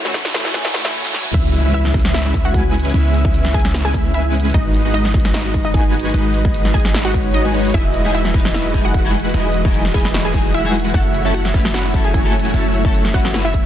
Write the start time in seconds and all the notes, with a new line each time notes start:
Already playing: F#2 E3 A3 F#4, riser
0.04 E3 A3 C#4 E4 F#4 C#5 E5, snare
0.14 kick, snare, closed hi-hat
0.25 snare
0.33 E3 A3 C#4 E4 F#4 G#4 C#5 E5, snare, closed hi-hat
0.40 closed hi-hat
0.45 snare, closed hi-hat
0.50 E3, closed hi-hat
0.54 A3 C#4 G#4, kick, snare, closed hi-hat
0.65 A3 E4 F#4 C#5 E5, snare
0.74 snare, closed hi-hat
0.83 E3 A3 C#4 E4, snare
0.94 A3 E4 F#4 C#5 G#5
1.05 snare
1.14 snare
1.25 mid tom
1.34 C#2 C#3 G#3 B3 C#4 E4 B4 E5, kick, closed hi-hat, crash, impact
1.54 closed hi-hat
1.65 G#3 C#4 E4 B4 E5
1.74 E4 E5, closed hi-hat
1.85 snare
1.94 G#3 C#4 E4 B4 E5, kick, closed hi-hat
2.00 closed hi-hat
2.05 snare, closed hi-hat
2.10 closed hi-hat
2.14 E4 E5, snare, closed hi-hat
2.25 G#3 C#4 E4 B4 E5
2.34 kick, closed hi-hat
2.45 F#4 F#5
2.54 G#3 C#4 E4 B4 G#5, kick, closed hi-hat
2.74 closed hi-hat
2.80 closed hi-hat
2.85 closed hi-hat
2.90 closed hi-hat
2.94 C#2 G#3 C#4 E4 B4 E5, closed hi-hat
3.14 closed hi-hat
3.25 G#3 E4 E5, kick
3.34 closed hi-hat
3.45 snare
3.54 G#3 C#4 E4 G#4 B4 E5 G#5, kick, closed hi-hat
3.59 closed hi-hat
3.65 snare, closed hi-hat
3.70 closed hi-hat
3.74 snare
3.85 G#3 C#4 E4 G#4 B4 E5 G#5
3.94 kick, closed hi-hat
4.14 G#3 C#4 E4 B4 E5 G#5, closed hi-hat
4.34 closed hi-hat
4.40 closed hi-hat
4.45 closed hi-hat
4.50 closed hi-hat
4.54 G#1 D#4 F#4 B4 D#5, kick, closed hi-hat
4.74 closed hi-hat
4.85 G#3 D#4 F#4 B4 D#5
4.94 D#4 D#5, closed hi-hat
5.05 snare
5.14 G#3 D#4 F#4 B4 D#5, kick, closed hi-hat
5.20 closed hi-hat
5.25 snare, closed hi-hat
5.30 closed hi-hat
5.34 D#4 D#5, snare, closed hi-hat
5.45 G#3 D#4 F#4 B4 D#5
5.54 kick, closed hi-hat
5.65 D#4 D#5
5.74 G#3 D#4 F#4 B4 G#5, kick, closed hi-hat
5.94 closed hi-hat
5.99 closed hi-hat
6.05 closed hi-hat
6.09 closed hi-hat
6.14 G#1 G#3 D#4 F#4 B4 D#5, closed hi-hat
6.34 closed hi-hat
6.45 G#3 D#4 F#4 B4 D#5, kick
6.54 closed hi-hat
6.65 snare
6.74 G#3 D#4 F#4 G#4 B4 D#5 G#5, kick, closed hi-hat
6.80 closed hi-hat
6.85 snare, closed hi-hat
6.90 closed hi-hat
6.94 snare, closed hi-hat
7.05 G#3 D#4 F#4 B4 D#5 F#5
7.14 G#3 D#4 B4 C#5, kick, closed hi-hat
7.34 D#4 D#5, closed hi-hat
7.45 G#3 D#4 F#4 B4 G#5
7.54 G#3 D#4 F#4 B4 C#5, closed hi-hat
7.60 closed hi-hat
7.65 closed hi-hat
7.70 F#3, closed hi-hat
7.74 E1 E3 D#4 E4 F#4 G#4 B4 D#5 E5, kick, closed hi-hat
7.94 closed hi-hat
8.04 F#3 G#3 D#4 E4 F#4 G#4 B4 D#5
8.14 E4 E5, closed hi-hat
8.25 snare
8.33 F#3 G#3 D#4 E4 F#4 B4 D#5, kick, closed hi-hat
8.40 closed hi-hat
8.45 snare, closed hi-hat
8.50 F#3, closed hi-hat
8.54 D#4 E4 B4 E5, snare, closed hi-hat
8.65 G#3 E4 F#4 B4 D#5
8.74 F#3 D#4 E4 G#4, kick, closed hi-hat
8.85 F#4 F#5
8.94 G#3 E4 F#4 B4 F#5, kick, closed hi-hat
9.04 F#3 D#4 E4 G#4
9.14 closed hi-hat
9.20 closed hi-hat
9.25 closed hi-hat
9.29 F#3, closed hi-hat
9.34 E1 G#3 D#4 E4 F#4 G#4 B4 D#5, closed hi-hat
9.54 closed hi-hat
9.64 F#3 G#3 D#4 E4 F#4 G#4 B4 D#5, kick
9.74 closed hi-hat
9.85 snare
9.93 F#3 G#3 D#4 E4 F#4 G#4 B4 D#5 G#5, kick, closed hi-hat
10.00 closed hi-hat
10.05 snare, closed hi-hat
10.10 F#3, closed hi-hat
10.14 D#4 E4 B4, snare, closed hi-hat
10.25 G#3 E4 F#4 G#4 B4 D#5 G#5
10.33 F#3 D#4 E4 G#4, kick, closed hi-hat
10.54 G#3 E4 F#4 B4 E5 F#5, closed hi-hat
10.64 F#3 D#4 E4 G#4
10.74 closed hi-hat
10.80 closed hi-hat
10.85 closed hi-hat
10.90 F#3, closed hi-hat
10.94 F#1 F#3 A3 C#4 E4 F#4 A4 C#5 E5 F#5, kick, closed hi-hat
11.14 closed hi-hat
11.24 F#3 A3 C#4 E4 F#4 A4 C#5 E5
11.34 F#4 F#5, closed hi-hat
11.45 snare
11.53 F#3 A3 C#4 E4 F#4 B4 E5, kick, closed hi-hat
11.60 closed hi-hat
11.65 snare, closed hi-hat
11.70 F#3, closed hi-hat
11.74 C#4 E4 F#4 B4 F#5, snare, closed hi-hat
11.85 A3 E4 F#4 C#5 E5
11.93 F#3 C#4 E4 A4, kick, closed hi-hat
12.04 G#4 G#5
12.14 A3 E4 F#4 C#5 G#5, kick, closed hi-hat
12.24 F#3 C#4 E4 A4
12.34 closed hi-hat
12.39 closed hi-hat
12.45 closed hi-hat
12.50 F#3, closed hi-hat
12.54 F#1 A3 C#4 E4 F#4 A4 C#5 E5, closed hi-hat
12.74 closed hi-hat
12.84 F#3 A3 C#4 E4 A4 C#5 E5, kick
12.94 closed hi-hat
13.05 snare
13.13 F#3 A3 C#4 E4 F#4 B4 C#5 E5 F#5, kick, closed hi-hat
13.20 closed hi-hat
13.25 snare, closed hi-hat
13.29 F#3, closed hi-hat
13.34 C#4 E4 B4, snare, closed hi-hat
13.45 A3 E4 F#4 C#5 E5
13.54 kick, closed hi-hat